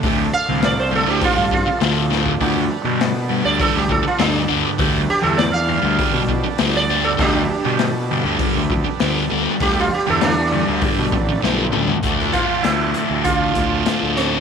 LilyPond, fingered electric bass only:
\new Staff \with { instrumentName = "Fingered electric bass" } { \clef bass \time 4/4 \key g \mixolydian \tempo 4 = 100 d,8 r16 c,4 d,16 r16 g,8 r16 d,4 | d,8 r16 b,4 d,16 r16 d,8 r16 d,8 d,16 r16 | d,8 r16 e,4 d,16 r16 b,8 r16 d,4 | d,8 r16 b,4 d,16 r16 d,8 r16 d,8 d,16 r16 |
d,8 r16 e,4 d,16 r16 b,16 a,,8 b,,8 d,8 | d,8 r8 d,8 r16 d,8. d,8 r16 d,8. | }